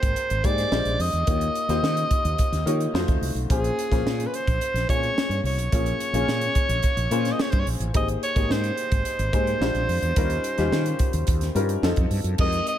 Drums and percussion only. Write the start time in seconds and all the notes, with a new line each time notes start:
0.03 kick, closed hi-hat
0.16 closed hi-hat
0.30 closed hi-hat
0.44 kick, closed hi-hat
0.58 snare, closed hi-hat
0.72 snare
0.85 closed hi-hat
1.00 open hi-hat
1.13 closed hi-hat
1.27 kick, closed hi-hat
1.41 closed hi-hat
1.55 closed hi-hat
1.69 snare, closed hi-hat
1.84 snare
1.97 closed hi-hat
2.11 kick, closed hi-hat
2.25 closed hi-hat
2.38 kick, closed hi-hat
2.53 snare, closed hi-hat
2.67 closed hi-hat
2.81 closed hi-hat
2.95 snare
3.08 kick, closed hi-hat
3.23 open hi-hat
3.36 closed hi-hat
3.50 kick, closed hi-hat
3.64 closed hi-hat
3.79 closed hi-hat
3.92 kick, snare, closed hi-hat
4.07 snare
4.20 closed hi-hat
4.34 closed hi-hat
4.47 kick, closed hi-hat
4.61 closed hi-hat
4.76 snare, closed hi-hat
4.89 kick, closed hi-hat
5.03 closed hi-hat
5.18 snare
5.31 closed hi-hat
5.45 open hi-hat
5.59 closed hi-hat
5.72 kick, closed hi-hat
5.86 closed hi-hat
6.00 closed hi-hat
6.14 closed hi-hat
6.29 snare
6.41 closed hi-hat
6.55 kick, closed hi-hat
6.69 closed hi-hat
6.83 kick, closed hi-hat
6.97 closed hi-hat
7.11 closed hi-hat
7.25 snare, closed hi-hat
7.39 snare
7.52 kick, closed hi-hat
7.67 open hi-hat
7.81 closed hi-hat
7.94 kick, closed hi-hat
8.09 closed hi-hat
8.23 closed hi-hat
8.36 kick, closed hi-hat
8.51 snare
8.64 closed hi-hat
8.78 closed hi-hat
8.92 kick, closed hi-hat
9.05 closed hi-hat
9.19 closed hi-hat
9.33 kick, closed hi-hat
9.47 closed hi-hat
9.62 snare
9.75 closed hi-hat
9.89 open hi-hat
10.03 closed hi-hat
10.16 kick, closed hi-hat
10.30 closed hi-hat
10.44 closed hi-hat
10.58 snare, closed hi-hat
10.72 snare
10.86 closed hi-hat
10.99 kick, closed hi-hat
11.13 closed hi-hat
11.27 kick, closed hi-hat
11.41 snare, closed hi-hat
11.56 closed hi-hat
11.69 closed hi-hat
11.83 snare
11.96 kick, closed hi-hat
12.11 open hi-hat
12.24 closed hi-hat
12.38 kick, crash
12.52 closed hi-hat
12.67 closed hi-hat